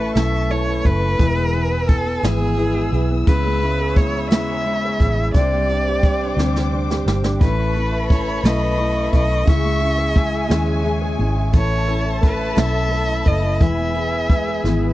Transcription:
Already playing: A1 A3 C#4 E4 B4 A5 C#6
0.15 B1 A3 C#4 E4 B4 E5, snare, closed hi-hat
0.32 E4
0.50 A3 C#4 E4 B4 C#5, closed hi-hat
0.67 E4
0.84 F#1 A3 C#4 E4 B4, kick, closed hi-hat
1.02 E4
1.19 E1 E3 G#3 B3 E4 G#4 G#5 E6, kick, closed hi-hat
1.36 B3
1.53 E3 B3 E4 G#4, closed hi-hat
1.70 B3
1.88 E3 B3 E4 A4, kick, closed hi-hat
2.06 B3
2.22 G#1 E3 G#3 B3 E4 G#4, snare, closed hi-hat
2.40 B3
2.57 E3 G#3 B3 E4 G#4, closed hi-hat
2.75 B3
2.91 B1 E3 B3 E4 G#4, closed hi-hat
3.11 B3
3.26 C#2 C#3 G#3 B3 E4 B4 C#5 B5, kick, closed hi-hat
3.46 G#3
3.61 B3 E4, closed hi-hat
3.81 G#4
3.95 G#3 B3 E4 B4 C#5, kick, closed hi-hat
4.17 E4
4.30 D#2 C#3 G#3 B3 E4 B4 E5, snare, closed hi-hat
4.50 G#4
4.65 G#3 B3 E4 B4, closed hi-hat
4.85 G#4
5.00 A1 G#3 B3 E4 B4, kick, closed hi-hat
5.19 E4
5.34 C2 C3 C4 D4 G4 C5 D5 G5 D6, kick, closed hi-hat
5.53 G3
5.67 D4 G4 C5, closed hi-hat
5.72 D4
5.88 G4
6.01 C4 D4 G4 C5, kick, closed hi-hat
6.05 G3
6.24 D4
6.37 D2 G3 C4 D4 G4 C5, snare
6.56 C5, snare
6.71 C4 D4 G4 C5
6.91 G4, snare
7.06 G1 G3 D4 G4 C5, snare
7.24 D4, snare
7.40 A1 A3 C#4 E4 B4 A5 B5 C#6, kick, closed hi-hat
7.59 E4
7.75 A3 C#4 E4, closed hi-hat
7.92 E4
8.09 A3 C#4 E4 B4 C#5, kick, closed hi-hat
8.28 E4
8.43 B1 A3 C#4 E4 B4 D#5, snare, closed hi-hat
8.77 A3 C#4 E4 B4, closed hi-hat
8.94 E4
9.12 B1 A3 C#4 E4 B4 D#5, kick, closed hi-hat
9.29 E4
9.46 C#2 C#3 G#3 C#4 E4 G#4 E5 C#6, kick, closed hi-hat
9.65 G#3
9.81 C#4 E4 G#4, closed hi-hat
9.98 G#4
10.14 G#3 C#4 E4 G#4 G#5, kick, closed hi-hat
10.32 E4
10.49 D#2 C#3 G#3 C#4 E4 G#4, snare, closed hi-hat
10.65 C#5
10.84 G#3 C#4 E4 G#4, closed hi-hat
11.02 G#4
11.18 G#1 G#3 C#4 E4 G#4, closed hi-hat
11.36 E4
11.52 A1 A3 C#4 E4 A4 B4 C#5 A5 B5, kick, closed hi-hat
11.57 C#5
11.71 E4
11.87 C#4 E4 A4 B4, closed hi-hat
12.05 E4
12.21 A3 C#4 E4 A4 B4, kick, closed hi-hat
12.26 B4
12.38 E4
12.55 B1 A3 C#4 E4 B4 E5, snare, closed hi-hat
12.73 E4
12.90 A3 C#4 E4 A4 B4, closed hi-hat
13.08 E4
13.24 F#1 C#4 E4 A4 B4 D#5, kick, closed hi-hat
13.43 E4
13.60 E1 E3 G#3 B3 E4 G#4 B4 E5 G#5, kick, closed hi-hat
13.78 B3
13.93 B3 G#4 B4, closed hi-hat
14.14 B4
14.28 G#3 B3 E4 B4, kick, closed hi-hat
14.48 G#4
14.64 G#1 E3 G#3 B3 E4 B4, snare
14.84 B4

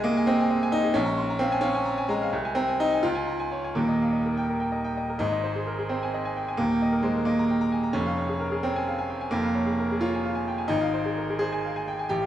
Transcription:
Already playing: C2 G#3 G#5 A#5
0.04 A#3 D#5
0.17 G#5
0.27 C4 D#5
0.40 G#5
0.50 D#5
0.63 G#5
0.72 D#4 D#5
0.84 G#4
0.94 A#1 C#4
1.05 A#5
1.18 C6
1.30 A#5
1.39 C4 F5
1.52 G#5
1.61 C#4 F5
1.75 G#5
1.86 A#5
1.98 G#5
2.09 G#3 A#5
2.22 F5
2.33 C2
2.45 G#5
2.55 C4 A#5
2.68 G#5
2.80 D#4 D#5
2.93 G#5
3.03 C#2 F4
3.15 G#5
3.27 A#5
3.40 G#5
3.52 C#5
3.64 G#5
3.75 D#1 D#2 A#3
3.89 D#5
4.02 F5
4.13 D#5
4.26 A#4
4.37 G5
4.49 A#4
4.60 G5
4.72 D#5
4.84 G5
4.97 D#5
5.10 A#4
5.19 G#1 G#2 D#4
5.32 D#5
5.44 C5
5.56 G#4
5.67 A#4
5.79 G#4
5.89 C4 C5
6.03 G#5
6.14 D#5
6.25 G#5
6.36 G5
6.48 G#5
6.57 D#1 D#2 A#3
6.71 G5
6.82 D#5
6.92 A#4
7.03 G#3 C5
7.16 A#4
7.25 A#3 D#5
7.39 A#5
7.50 G5
7.61 A#5
7.72 G#5
7.83 A#5
7.93 F1 F2 C#4
8.06 F5
8.17 C#5
8.29 G#4
8.40 A#4
8.52 G#4
8.63 C4 C#5
8.76 G#5
8.88 F5
8.99 G#5
9.10 G5
9.21 G#5
9.31 F1 F2 A#3
9.43 F5
9.55 C#5
9.66 G#4
9.79 A#4
9.92 G#4
10.01 F4 C#5
10.14 G#5
10.25 F5
10.35 G#5
10.48 G5
10.58 G#5
10.68 G#1 D#4
10.81 F5
10.93 C5
11.05 G#4
11.18 A#4
11.30 G#4
11.39 G#4 C5
11.53 G#5
11.64 F5
11.76 G#5
11.88 G5
11.99 G#5
12.09 A1 G4
12.22 F5

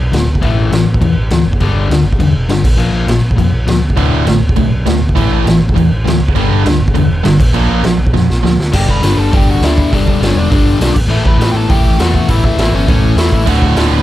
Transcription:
Already playing: B1
0.12 D1 D2 A2, snare, crash
0.28 D2
0.35 kick
0.41 A1 A2 E3 A3, kick, crash
0.57 A1
0.72 A1 A2 E3, snare, crash
0.87 A1
0.94 kick
1.01 E2 A2 E3, kick, crash
1.16 A1
1.30 D2 A2 E3, snare, crash
1.45 F#1
1.53 kick
1.60 G1 G2 D3 G3, kick, crash
1.75 G1
1.89 D2 G2 D3, snare, crash
2.04 G1
2.13 kick
2.19 E2 G2 D3, kick, crash
2.33 E1
2.48 G1 G2 D3, snare, crash
2.64 A#1, kick, crash
2.77 A#1 A#2 F3 A#3, crash
2.92 A#1
3.07 A#1 A#2 F3, snare, crash
3.22 A#1
3.31 kick
3.36 F2 A#2 F3, kick, crash
3.52 A#1
3.67 D2 A#2 F3, snare, crash
3.83 D2
3.90 kick
3.96 D1 D2 A2 D3, kick, crash
4.13 D1
4.26 A1 D2 A2, snare, crash
4.42 D1
4.49 kick
4.56 B1 D2 A2, kick, crash
4.72 B1
4.86 D1 D2 A2, snare, crash
5.02 D2
5.09 kick
5.15 A1 A2 E3 A3, kick, crash
5.31 A1
5.45 A1 A2 E3, snare, crash
5.61 A1
5.69 kick
5.74 E2 A2 E3, kick, crash
5.91 A1
6.04 D2 A2 E3, snare, crash
6.21 C#2
6.29 kick
6.35 G1 G2 D3 G3, kick, crash
6.51 G1
6.64 D2 G2 D3, snare, crash
6.81 G1
6.88 kick
6.94 E2 G2 D3, kick, crash
7.10 E1
7.24 G1 G2 D3, snare, crash
7.39 A#1, kick, crash
7.54 A#1 A#2 F3 A#3, crash
7.69 A#1
7.84 A#1 A#2 F3, snare, crash
7.99 A#1
8.07 kick
8.13 F2 A#2 F3, kick, snare
8.29 A#1, snare
8.43 D2 A#2 F3, snare
8.59 D2, snare
8.72 G1 G2 D3 G3 G4 G5, kick, crash
8.88 G1 B4 B5, kick
9.02 G1 G2 D3 G3, snare, open hi-hat
9.18 G1 A4 A5
9.32 G1 G2 D3 G3 G4, kick, open hi-hat
9.37 G5
9.47 G1 F#4
9.51 F#5
9.61 D2 G2 D3 G3 E4 E5, snare, open hi-hat
9.78 kick
9.92 G1 G2 D3 G3 D4 D5, kick, open hi-hat
10.08 kick
10.20 G1 G2 D3 G3 C#4, snare, open hi-hat
10.25 C#5
10.35 E1 D4 D5
10.50 G1 G2 D3 G3, kick, open hi-hat
10.65 G2
10.80 B1 G2 D3 G3, snare, open hi-hat
10.96 A1, kick, crash
11.08 A1 A2 E3 A3 E4 E5
11.25 A1 B4 B5, kick
11.38 A1 A2 E3 A3, snare, open hi-hat
11.51 A1 G5
11.56 A4 A5
11.68 A1 A2 E3 A3 G4 G5, kick, open hi-hat
11.84 A1
11.99 E2 A2 E3 A3 F#4 F#5, snare, open hi-hat
12.14 F#4 F#5, kick
12.28 A1 A2 E3 A3 E4 E5, kick, open hi-hat
12.44 E4 E5, kick
12.58 A1 A2 E3 A3 E4 E5, snare, open hi-hat
12.72 G1 C#4 C#5
12.88 A1 A2 E3 A3, kick, open hi-hat
13.01 A2
13.17 E2 A2 E3 A3 E4 E5, snare, open hi-hat
13.32 A1, kick
13.46 D1 D2 A2 D3 F#4 F#5, kick, crash
13.62 D1, kick
13.75 D1 D2 A2 D3 A4 A5, snare, open hi-hat
13.91 D1 B4 B5

